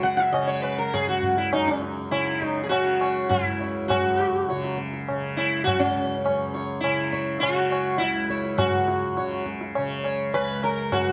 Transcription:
Already playing: C#2 F#2 C#3
0.03 F#5, tabla ke
0.17 E5, tabla te
0.33 C#3 D#5, tabla na
0.47 C#5
0.62 B4, tabla na
0.78 A#4
0.93 C#2 G#4, tabla na, tabla ge
1.09 F#4
1.23 tabla ge
1.38 E4
1.53 F#2 D#4, tabla na
1.67 C#4
1.82 tabla te
2.11 C#3 E4, tabla na
2.42 D#4 C#5, tabla ke
2.64 G#4
2.69 C#3 F#4, tabla na
3.01 C#5, tabla na
3.29 C#2 E4, tabla na, tabla ge
3.60 C#5, tabla te
3.88 F#2 F#4, tabla na, tabla ge
4.20 tabla te
4.49 C#3 C#5, tabla te
4.64 tabla te
4.78 tabla ke
4.93 tabla te
5.08 C#3, tabla na
5.37 E4, tabla na
5.64 F#4, tabla na, tabla ge
5.69 C#2
5.79 C#4
5.97 tabla ge
6.24 F#2 C#5, tabla na
6.54 C#5, tabla te
6.81 E4, tabla na
6.86 C#3
7.12 C#5, tabla ke
7.40 C#3 F#4, tabla na
7.70 C#5, tabla na
7.98 C#2 E4, tabla te
8.16 tabla te
8.30 C#5, tabla ke
8.44 tabla te
8.58 F#2 F#4, tabla na, tabla ge
8.88 tabla te
9.17 C#3 C#5, tabla te
9.32 tabla te
9.46 tabla ke
9.61 tabla te
9.75 C#3 C#5, tabla na
10.04 C#5, tabla na
10.34 C#2 B4, tabla na
10.63 A#4, tabla na
10.92 F#2 F#4, tabla na, tabla ge

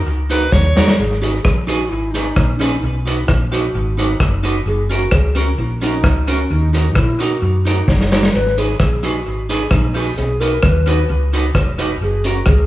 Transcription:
0.06 C#2, muted clean electric guitar stroke
0.30 D#4 F#4 A#4 B4, closed hi-hat, tambourine
0.52 D#2 C#5, kick, snare
0.76 E2 D#4 F#4 A#4, snare, tambourine
0.88 snare
0.98 G#1 G#4
1.22 D#4 F#4 G#4 B4, closed hi-hat, tambourine
1.43 A#1 G#4, kick, cross-stick
1.67 D#4 F#4 G#4 B4, closed hi-hat, tambourine
1.89 G#1 E4
2.11 D#4, closed hi-hat
2.15 G#4 B4, tambourine
2.36 A#1, kick, cross-stick
2.58 C#4 D#4 G#4 B4, closed hi-hat, tambourine
2.79 D#4
2.83 B1
3.04 D#4 F#4 B4, closed hi-hat, tambourine
3.26 A#1 E4, muted clean electric guitar stroke, kick, cross-stick
3.52 D#4 F#4 B4, closed hi-hat, tambourine
3.74 G#1, muted clean electric guitar stroke
3.97 D#4 F#4 B4, closed hi-hat, tambourine
4.20 F#1, kick, cross-stick
4.43 D#4 F#4 B4, closed hi-hat, tambourine
4.66 F#1 G#4
4.90 C#4 F#4 A#4, closed hi-hat, tambourine
5.11 C#2 G#4, kick, cross-stick
5.35 C#4 F#4 A#4, closed hi-hat, tambourine
5.58 A#1 E4
5.82 C#4 D#4 F#4 A#4, closed hi-hat, tambourine
6.04 C#2, kick, cross-stick
6.28 C#4 F#4 A#4, closed hi-hat, tambourine
6.50 D#2 D#4
6.73 D#4 F#4 A#4, closed hi-hat, tambourine
6.95 A#2 E4, muted clean electric guitar stroke, kick, cross-stick
7.20 D#4 F#4 A#4, closed hi-hat, tambourine
7.42 F#2, muted clean electric guitar stroke
7.65 D#4 F#4 A#4, closed hi-hat, tambourine
7.88 F#1, kick, snare
8.01 snare
8.12 D#4 F#4 A#4, snare, tambourine
8.23 snare
8.34 G#1 B4, hi-hat pedal
8.58 D#4 G#4 B4, closed hi-hat, tambourine
8.80 A#1 G#4, kick, cross-stick
9.03 D#4 F#4 G#4 B4, closed hi-hat, tambourine
9.27 G#1
9.49 D#4 G#4 B4, closed hi-hat, tambourine
9.71 A#1 D#4, kick, cross-stick
9.95 D#4 F#4 G#4 B4, open hi-hat, tambourine
10.17 B1 G#4, hi-hat pedal
10.40 D#4 F#4 A#4 B4, closed hi-hat, tambourine
10.63 D#2 B4, muted clean electric guitar stroke, kick, cross-stick
10.87 D#4 F#4 B4, closed hi-hat, tambourine
11.09 C#2, muted clean electric guitar stroke
11.33 D#4 F#4 B4, closed hi-hat, tambourine
11.55 E1, kick, cross-stick
11.79 D#4 F#4 B4, closed hi-hat, tambourine
12.01 F#1 G#4
12.24 C#4 F#4 A#4, closed hi-hat, tambourine
12.46 C#2 G#4, kick, cross-stick

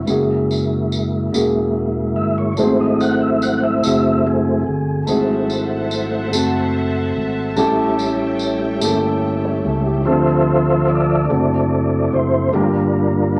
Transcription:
Already playing: B3 C#4 E4 F#4 A4
0.05 F#1 G#3 A#3 C#4 E4 F#4, tambourine
0.10 G#4
0.51 tambourine
0.92 tambourine
1.33 E1 A#3 C#4 E4 F#4 G#4, tambourine
2.16 G1 E5
2.38 C#5
2.57 G#1 G#2 F#3 A3 B3 C4 E4 F#4 G#4 C5, tambourine
2.64 C4
2.80 D#5
3.00 F#5, tambourine
3.22 E5
3.42 F#5, tambourine
3.57 F#5
3.63 E5
3.83 F#1 A3 C4 E4 F#4 G#4, tambourine
4.25 F#3 A3 C4 E4 G#4
4.67 G1
5.07 G#1 G#2 F#3 A3 C4 E4 F#4 G#4 C5 E5 F#5 A5, tambourine
5.50 tambourine
5.91 tambourine
6.32 F#1 A3 C4 E4 F#4 A4, tambourine
7.16 G#1
7.56 A1 A2 G3 A3 C#4 E4 G4 A4 C#5 G5, tambourine
7.99 tambourine
8.39 tambourine
8.81 G1 A3 A#3 E4 G4 A4, tambourine
8.88 C#4
9.45 E4 C#5
9.65 C#2 C#4 A4
9.86 G4
10.04 D2 D3 F3 A3 C4 D4 F4 A4 C5 E5
10.08 F4 A4
10.88 A4 D5
11.28 F#1 F#3 A3 C4 D4 E4 F#4 A4
12.12 F#1 C5
12.51 G1 G2 G3 A3 A#3 D4 F4 G4 A#4
12.59 A#3

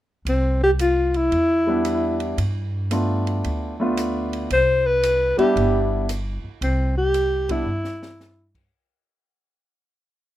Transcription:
0.25 C2 C4, ride
0.64 G4
0.79 F4, hi-hat pedal, ride
1.14 E4, ride
1.32 E2, ride
1.67 G3 B3 D4 E4
1.85 hi-hat pedal, ride
2.20 ride
2.38 G2, ride
2.91 A3 B3 D4 F4, hi-hat pedal, ride
3.27 ride
3.44 D2, ride
3.80 A3 B3 D4 F4
3.97 hi-hat pedal, ride
4.33 ride
4.50 C2 C5, ride
4.86 B4
5.03 hi-hat pedal, ride
5.37 G3 B3 D4 E4 G4, muted upright bass stroke, ride
5.56 G1, ride
6.09 hi-hat pedal, ride
6.44 muted upright bass stroke
6.61 C2 C4, ride
6.98 G4
7.14 hi-hat pedal, ride
7.49 G3 B3 D4 E4, kick, ride
7.66 G2
7.84 snare
8.03 snare
8.20 snare, hi-hat pedal
8.55 kick, crash

